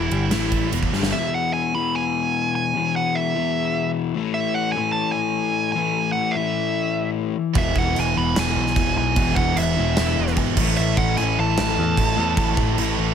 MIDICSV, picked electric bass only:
0, 0, Header, 1, 2, 480
1, 0, Start_track
1, 0, Key_signature, 4, "major"
1, 0, Tempo, 401875
1, 1351, Time_signature, 4, 2, 24, 8
1, 15694, End_track
2, 0, Start_track
2, 0, Title_t, "Picked electric bass"
2, 0, Program_c, 0, 34
2, 0, Note_on_c, 0, 28, 81
2, 122, Note_off_c, 0, 28, 0
2, 137, Note_on_c, 0, 31, 87
2, 366, Note_off_c, 0, 31, 0
2, 376, Note_on_c, 0, 33, 91
2, 830, Note_off_c, 0, 33, 0
2, 864, Note_on_c, 0, 28, 78
2, 1090, Note_off_c, 0, 28, 0
2, 1102, Note_on_c, 0, 31, 84
2, 1329, Note_off_c, 0, 31, 0
2, 9022, Note_on_c, 0, 28, 92
2, 9248, Note_off_c, 0, 28, 0
2, 9265, Note_on_c, 0, 28, 93
2, 9490, Note_off_c, 0, 28, 0
2, 9522, Note_on_c, 0, 28, 91
2, 9739, Note_off_c, 0, 28, 0
2, 9758, Note_on_c, 0, 28, 88
2, 9977, Note_off_c, 0, 28, 0
2, 10231, Note_on_c, 0, 35, 92
2, 10453, Note_off_c, 0, 35, 0
2, 10466, Note_on_c, 0, 28, 95
2, 10691, Note_off_c, 0, 28, 0
2, 10712, Note_on_c, 0, 35, 90
2, 10934, Note_off_c, 0, 35, 0
2, 10947, Note_on_c, 0, 28, 91
2, 11171, Note_off_c, 0, 28, 0
2, 11190, Note_on_c, 0, 28, 94
2, 11413, Note_off_c, 0, 28, 0
2, 11432, Note_on_c, 0, 28, 93
2, 11654, Note_off_c, 0, 28, 0
2, 11682, Note_on_c, 0, 28, 94
2, 11899, Note_off_c, 0, 28, 0
2, 11926, Note_on_c, 0, 28, 101
2, 12141, Note_off_c, 0, 28, 0
2, 12161, Note_on_c, 0, 28, 98
2, 12379, Note_off_c, 0, 28, 0
2, 12387, Note_on_c, 0, 32, 93
2, 12611, Note_off_c, 0, 32, 0
2, 12624, Note_on_c, 0, 33, 93
2, 12850, Note_off_c, 0, 33, 0
2, 12885, Note_on_c, 0, 33, 94
2, 13101, Note_off_c, 0, 33, 0
2, 13112, Note_on_c, 0, 33, 100
2, 13334, Note_off_c, 0, 33, 0
2, 13360, Note_on_c, 0, 33, 89
2, 13578, Note_off_c, 0, 33, 0
2, 13601, Note_on_c, 0, 33, 96
2, 13819, Note_off_c, 0, 33, 0
2, 13839, Note_on_c, 0, 33, 103
2, 14057, Note_off_c, 0, 33, 0
2, 14074, Note_on_c, 0, 40, 98
2, 14295, Note_off_c, 0, 40, 0
2, 14301, Note_on_c, 0, 33, 93
2, 14528, Note_off_c, 0, 33, 0
2, 14543, Note_on_c, 0, 40, 87
2, 14769, Note_off_c, 0, 40, 0
2, 14781, Note_on_c, 0, 33, 95
2, 15008, Note_off_c, 0, 33, 0
2, 15024, Note_on_c, 0, 33, 92
2, 15249, Note_off_c, 0, 33, 0
2, 15265, Note_on_c, 0, 33, 96
2, 15490, Note_off_c, 0, 33, 0
2, 15502, Note_on_c, 0, 33, 91
2, 15694, Note_off_c, 0, 33, 0
2, 15694, End_track
0, 0, End_of_file